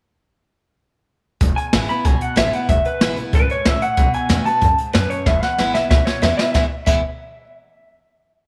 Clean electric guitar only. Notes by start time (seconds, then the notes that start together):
1.56 G#5
1.89 B5
2.05 G#5
2.22 F#5
2.38 E5
2.53 F#5
2.69 E5
2.86 B4
3.35 B4
3.51 C#5
3.67 E5
3.82 F#5
4.14 G#5
4.45 A5
4.94 B4
5.10 C#5
5.26 E5
5.43 F#5
5.74 E5
5.90 E5
6.05 C#5
6.22 E5
6.37 E5
6.53 E5
6.87 E5